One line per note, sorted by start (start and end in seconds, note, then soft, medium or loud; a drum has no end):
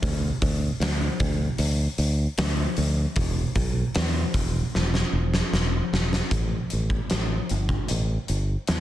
0.02 0.30 D2 loud
0.02 kick loud
0.02 open hi-hat medium
0.42 0.69 D2 medium
0.42 kick medium
0.42 open hi-hat medium
0.80 1.08 D2 loud
0.80 snare loud
0.80 open hi-hat medium
1.20 1.48 D2 medium
1.20 kick medium
1.20 open hi-hat medium
1.58 1.86 D2 medium
1.58 open hi-hat medium
1.98 2.26 D2 medium
1.98 open hi-hat medium
2.38 2.65 D2 medium
2.38 snare loud
2.38 open hi-hat medium
2.77 3.05 D2 medium
2.77 open hi-hat medium
3.16 3.44 E1 loud
3.16 kick loud
3.16 open hi-hat medium
3.55 3.83 B1 medium
3.55 kick medium
3.55 open hi-hat medium
3.95 4.23 E2 loud
3.95 snare loud
3.95 open hi-hat medium
4.34 4.62 E1 medium
4.34 kick medium
4.34 open hi-hat medium
4.75 5.02 E1 medium
4.75 snare medium
4.94 snare medium
5.13 5.40 E1 medium
5.34 snare medium
5.53 5.80 E1 medium
5.53 snare medium
5.93 6.20 E1 medium
5.93 snare loud
6.13 snare loud
6.31 6.58 A1 medium
6.31 kick loud
6.31 closed hi-hat medium
6.70 6.98 A1 medium
6.70 closed hi-hat medium
6.90 kick medium
7.10 7.38 A1 medium
7.10 snare loud
7.10 closed hi-hat medium
7.49 7.77 G1 medium
7.49 closed hi-hat medium
7.69 kick medium
7.88 8.16 A1 medium
7.88 closed hi-hat medium
8.28 8.55 G1 medium
8.28 closed hi-hat medium
8.67 8.80 E2 medium
8.67 snare loud
8.67 closed hi-hat medium